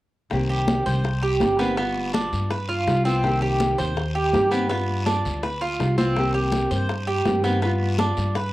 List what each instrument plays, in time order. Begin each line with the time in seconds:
0.30 upright bass C2, nylon-string guitar C3 D#3 A#3 C4 G4, high bongo, high conga, long guiro
0.49 cuban tres G4, high conga
0.68 high bongo, high conga, short guiro
0.86 upright bass C2, cuban tres C5, high bongo, high conga, short guiro
1.04 muted nylon-string guitar stroke, high bongo, high conga, long guiro
1.22 cuban tres G4, high bongo, high conga
1.40 upright bass G1, nylon-string guitar D#3 A#3 C4 G4, high bongo, low bongo, high conga, short guiro
1.59 nylon-string guitar D#3 A#3 C4 G4, cuban tres B3, high conga, short guiro
1.76 nylon-string guitar G3 B3 F4, cuban tres B3, high bongo, high conga, long guiro
1.96 high conga
2.14 cuban tres D4, high bongo, high conga, short guiro
2.33 upright bass G2, high bongo, high conga, short guiro
2.50 cuban tres B4, muted nylon-string guitar stroke, high bongo, high conga, long guiro
2.69 cuban tres F4, high bongo, high conga
2.87 upright bass C2, nylon-string guitar G3 B3 F4, high bongo, low bongo, high conga, short guiro
3.05 nylon-string guitar B3 F4, cuban tres C4, high bongo, short guiro
3.23 nylon-string guitar C3 D#3 A#3 C4 G4, high bongo, high conga, long guiro
3.42 cuban tres G4, high conga
3.60 high bongo, high conga, short guiro
3.78 upright bass D#2, cuban tres C5, high conga, short guiro
3.97 muted nylon-string guitar stroke, high bongo, high conga, long guiro
4.15 cuban tres G4, high bongo, high conga
4.32 upright bass G2, nylon-string guitar D#3 A#3 C4 G4, high bongo, low bongo, high conga, short guiro
4.51 nylon-string guitar D#3 A#3 C4 G4, cuban tres B3, high conga, short guiro
4.69 nylon-string guitar G3 B3 F4, cuban tres B3, high bongo, high conga, long guiro
4.88 high conga
5.06 cuban tres D4, high bongo, high conga, short guiro
5.25 upright bass D2, high bongo, high conga, short guiro
5.43 cuban tres B4, muted nylon-string guitar stroke, high bongo, high conga, long guiro
5.61 cuban tres F4, high bongo, high conga
5.79 upright bass C2, nylon-string guitar G3 B3 F4, high bongo, low bongo, high conga, short guiro
5.98 nylon-string guitar B3 F4, cuban tres C4, high bongo, high conga, short guiro
6.16 nylon-string guitar C3 D#3 A#3 C4 G4, high bongo, high conga, long guiro
6.34 cuban tres G4, high conga
6.52 high bongo, high conga, short guiro
6.71 upright bass G2, cuban tres C5, high conga, short guiro
6.89 muted nylon-string guitar stroke, high bongo, high conga, long guiro
7.07 cuban tres G4, high bongo, high conga
7.25 upright bass G2, nylon-string guitar D#3 A#3 C4 G4, high bongo, low bongo, high conga, short guiro
7.43 nylon-string guitar D#3 A#3 C4 G4, cuban tres B3, high bongo, high conga, short guiro
7.61 nylon-string guitar G3 B3 F4, cuban tres B3, high bongo, high conga, long guiro
7.80 high conga
7.98 cuban tres D4, high bongo, high conga, short guiro
8.17 upright bass G2, high bongo, high conga, short guiro
8.35 cuban tres B4, muted nylon-string guitar stroke, high bongo, high conga, long guiro